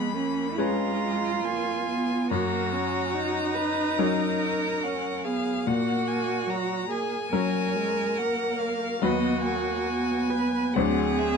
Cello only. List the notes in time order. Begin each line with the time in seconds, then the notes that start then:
Already playing: B3
0.14 C#4
0.57 F4
2.30 F#4
3.54 B4
3.97 A#4
5.24 G#4
5.66 F#4
6.88 G#4
7.31 A#4
9.01 F#4
10.29 B4
10.74 G#4